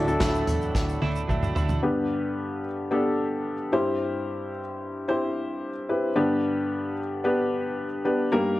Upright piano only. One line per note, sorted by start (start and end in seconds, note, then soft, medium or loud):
0.00 0.44 A2 medium
0.00 0.07 D4 medium
0.00 0.08 E4 medium
0.00 1.85 F#4 medium
0.00 0.08 A4 medium
0.07 0.90 D4 medium
0.07 0.90 E4 medium
0.07 0.90 A4 loud
1.83 2.60 G2 medium
1.83 2.60 D3 medium
1.83 2.65 B3 medium
1.83 2.65 D4 medium
1.83 2.65 G4 medium
1.83 2.66 B4 medium
2.91 3.53 B3 medium
2.91 3.53 D4 medium
2.91 3.53 G4 medium
2.91 3.53 A4 medium
3.72 4.50 G2 medium
3.72 4.59 C4 medium
3.72 4.59 E4 medium
3.72 4.59 G4 medium
3.72 4.59 C5 medium
5.08 5.69 C4 medium
5.08 5.70 E4 medium
5.08 5.70 G4 medium
5.08 5.70 C5 medium
5.89 6.09 C4 medium
5.89 6.10 E4 medium
5.89 6.10 G4 medium
5.89 6.10 B4 medium
6.16 6.93 G2 medium
6.16 6.93 D3 medium
6.16 6.98 B3 medium
6.16 6.98 D4 medium
6.16 6.98 G4 medium
6.16 6.98 B4 medium
7.24 7.86 B3 medium
7.24 7.86 D4 medium
7.24 7.86 G4 medium
7.24 7.86 B4 medium
8.05 8.26 B3 medium
8.05 8.26 D4 medium
8.05 8.26 G4 medium
8.05 8.26 B4 medium
8.32 8.60 G2 medium
8.32 8.60 G3 medium
8.32 8.60 A#3 loud
8.32 8.60 D#4 medium
8.32 8.60 G4 medium
8.32 8.60 A#4 loud